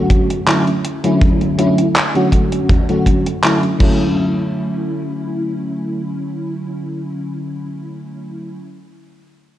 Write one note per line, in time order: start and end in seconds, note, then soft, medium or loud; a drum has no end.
0.00 0.26 D3 medium
0.00 0.26 F#3 medium
0.00 0.27 A3 medium
0.00 0.27 C#4 medium
0.00 0.27 F#4 medium
0.10 kick medium
0.10 closed hi-hat medium
0.30 closed hi-hat medium
0.47 0.69 D3 medium
0.47 0.69 F#3 medium
0.47 0.69 A3 medium
0.47 0.70 C#4 medium
0.47 0.70 E4 medium
0.47 clap loud
0.47 closed hi-hat medium
0.67 closed hi-hat soft
0.85 closed hi-hat medium
1.04 1.54 D3 medium
1.04 1.54 F#3 medium
1.04 1.54 A3 medium
1.04 1.55 C#4 medium
1.04 1.55 E4 medium
1.04 closed hi-hat soft
1.21 kick loud
1.21 closed hi-hat soft
1.41 closed hi-hat soft
1.58 1.80 D3 medium
1.58 1.80 F#3 medium
1.58 1.81 A3 medium
1.58 1.81 C#4 medium
1.58 1.81 E4 medium
1.58 closed hi-hat medium
1.78 closed hi-hat soft
1.96 clap loud
1.96 closed hi-hat soft
2.14 2.84 D3 medium
2.14 2.84 F#3 medium
2.14 2.84 A3 medium
2.14 2.85 C#4 medium
2.14 2.85 F#4 medium
2.14 closed hi-hat soft
2.32 kick medium
2.32 closed hi-hat medium
2.52 closed hi-hat soft
2.69 kick loud
2.69 closed hi-hat soft
2.89 3.23 D3 medium
2.89 3.23 F#3 medium
2.89 3.23 A3 medium
2.89 3.23 C#4 medium
2.89 3.23 F#4 medium
2.89 closed hi-hat soft
3.06 kick medium
3.06 closed hi-hat medium
3.26 closed hi-hat soft
3.43 3.65 D3 medium
3.43 3.66 F#3 medium
3.43 3.66 A3 medium
3.43 3.66 C#4 medium
3.43 3.66 E4 medium
3.43 clap loud
3.43 closed hi-hat soft
3.63 closed hi-hat soft
3.78 8.59 D3 medium
3.78 8.59 F#3 medium
3.78 8.60 A3 medium
3.78 8.60 C#4 medium
3.78 kick loud
3.78 crash medium
3.83 8.61 E4 medium